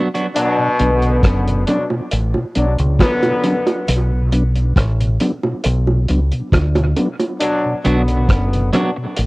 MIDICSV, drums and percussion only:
0, 0, Header, 1, 2, 480
1, 0, Start_track
1, 0, Key_signature, 2, "minor"
1, 0, Tempo, 881705
1, 193, Time_signature, 4, 2, 24, 8
1, 5044, End_track
2, 0, Start_track
2, 0, Title_t, "Drums"
2, 81, Note_on_c, 9, 42, 49
2, 135, Note_off_c, 9, 42, 0
2, 195, Note_on_c, 9, 42, 91
2, 249, Note_off_c, 9, 42, 0
2, 433, Note_on_c, 9, 42, 72
2, 488, Note_off_c, 9, 42, 0
2, 557, Note_on_c, 9, 42, 46
2, 612, Note_off_c, 9, 42, 0
2, 670, Note_on_c, 9, 36, 109
2, 672, Note_on_c, 9, 42, 94
2, 678, Note_on_c, 9, 37, 117
2, 725, Note_off_c, 9, 36, 0
2, 727, Note_off_c, 9, 42, 0
2, 732, Note_off_c, 9, 37, 0
2, 804, Note_on_c, 9, 42, 53
2, 859, Note_off_c, 9, 42, 0
2, 911, Note_on_c, 9, 42, 85
2, 917, Note_on_c, 9, 61, 78
2, 965, Note_off_c, 9, 42, 0
2, 971, Note_off_c, 9, 61, 0
2, 1036, Note_on_c, 9, 60, 63
2, 1090, Note_off_c, 9, 60, 0
2, 1151, Note_on_c, 9, 42, 96
2, 1205, Note_off_c, 9, 42, 0
2, 1275, Note_on_c, 9, 60, 58
2, 1330, Note_off_c, 9, 60, 0
2, 1390, Note_on_c, 9, 42, 75
2, 1445, Note_off_c, 9, 42, 0
2, 1517, Note_on_c, 9, 42, 50
2, 1571, Note_off_c, 9, 42, 0
2, 1630, Note_on_c, 9, 36, 104
2, 1635, Note_on_c, 9, 42, 94
2, 1635, Note_on_c, 9, 60, 72
2, 1640, Note_on_c, 9, 37, 114
2, 1685, Note_off_c, 9, 36, 0
2, 1689, Note_off_c, 9, 42, 0
2, 1690, Note_off_c, 9, 60, 0
2, 1694, Note_off_c, 9, 37, 0
2, 1757, Note_on_c, 9, 60, 81
2, 1758, Note_on_c, 9, 42, 46
2, 1812, Note_off_c, 9, 60, 0
2, 1813, Note_off_c, 9, 42, 0
2, 1871, Note_on_c, 9, 42, 77
2, 1872, Note_on_c, 9, 61, 78
2, 1925, Note_off_c, 9, 42, 0
2, 1926, Note_off_c, 9, 61, 0
2, 1996, Note_on_c, 9, 60, 72
2, 1997, Note_on_c, 9, 42, 47
2, 2050, Note_off_c, 9, 60, 0
2, 2051, Note_off_c, 9, 42, 0
2, 2113, Note_on_c, 9, 42, 101
2, 2168, Note_off_c, 9, 42, 0
2, 2353, Note_on_c, 9, 42, 75
2, 2407, Note_off_c, 9, 42, 0
2, 2479, Note_on_c, 9, 42, 45
2, 2533, Note_off_c, 9, 42, 0
2, 2590, Note_on_c, 9, 36, 112
2, 2593, Note_on_c, 9, 42, 91
2, 2598, Note_on_c, 9, 37, 119
2, 2645, Note_off_c, 9, 36, 0
2, 2647, Note_off_c, 9, 42, 0
2, 2653, Note_off_c, 9, 37, 0
2, 2724, Note_on_c, 9, 42, 55
2, 2778, Note_off_c, 9, 42, 0
2, 2831, Note_on_c, 9, 42, 84
2, 2837, Note_on_c, 9, 61, 77
2, 2885, Note_off_c, 9, 42, 0
2, 2891, Note_off_c, 9, 61, 0
2, 2957, Note_on_c, 9, 60, 65
2, 3012, Note_off_c, 9, 60, 0
2, 3069, Note_on_c, 9, 42, 97
2, 3123, Note_off_c, 9, 42, 0
2, 3196, Note_on_c, 9, 60, 55
2, 3251, Note_off_c, 9, 60, 0
2, 3312, Note_on_c, 9, 42, 72
2, 3366, Note_off_c, 9, 42, 0
2, 3438, Note_on_c, 9, 42, 47
2, 3493, Note_off_c, 9, 42, 0
2, 3550, Note_on_c, 9, 36, 99
2, 3554, Note_on_c, 9, 42, 96
2, 3555, Note_on_c, 9, 60, 73
2, 3559, Note_on_c, 9, 37, 122
2, 3605, Note_off_c, 9, 36, 0
2, 3608, Note_off_c, 9, 42, 0
2, 3609, Note_off_c, 9, 60, 0
2, 3613, Note_off_c, 9, 37, 0
2, 3676, Note_on_c, 9, 60, 78
2, 3678, Note_on_c, 9, 42, 46
2, 3730, Note_off_c, 9, 60, 0
2, 3733, Note_off_c, 9, 42, 0
2, 3791, Note_on_c, 9, 61, 78
2, 3792, Note_on_c, 9, 42, 78
2, 3846, Note_off_c, 9, 42, 0
2, 3846, Note_off_c, 9, 61, 0
2, 3917, Note_on_c, 9, 60, 73
2, 3919, Note_on_c, 9, 42, 51
2, 3972, Note_off_c, 9, 60, 0
2, 3973, Note_off_c, 9, 42, 0
2, 4032, Note_on_c, 9, 42, 94
2, 4086, Note_off_c, 9, 42, 0
2, 4273, Note_on_c, 9, 42, 77
2, 4328, Note_off_c, 9, 42, 0
2, 4399, Note_on_c, 9, 42, 46
2, 4453, Note_off_c, 9, 42, 0
2, 4512, Note_on_c, 9, 36, 107
2, 4513, Note_on_c, 9, 42, 91
2, 4519, Note_on_c, 9, 37, 112
2, 4566, Note_off_c, 9, 36, 0
2, 4568, Note_off_c, 9, 42, 0
2, 4573, Note_off_c, 9, 37, 0
2, 4645, Note_on_c, 9, 42, 54
2, 4699, Note_off_c, 9, 42, 0
2, 4754, Note_on_c, 9, 42, 86
2, 4758, Note_on_c, 9, 61, 79
2, 4761, Note_on_c, 9, 37, 65
2, 4809, Note_off_c, 9, 42, 0
2, 4812, Note_off_c, 9, 61, 0
2, 4815, Note_off_c, 9, 37, 0
2, 4990, Note_on_c, 9, 42, 99
2, 5044, Note_off_c, 9, 42, 0
2, 5044, End_track
0, 0, End_of_file